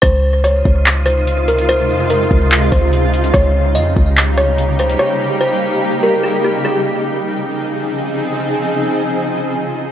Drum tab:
HH |x---x---x-x-x-xx|x---x---x-x-x-xx|x---x---x-x-x-xx|----------------|
CP |--------x-------|--------x-------|--------x-------|----------------|
BD |o-----o---------|------o---o-----|o-----o---------|----------------|

HH |----------------|----------------|
CP |----------------|----------------|
BD |----------------|----------------|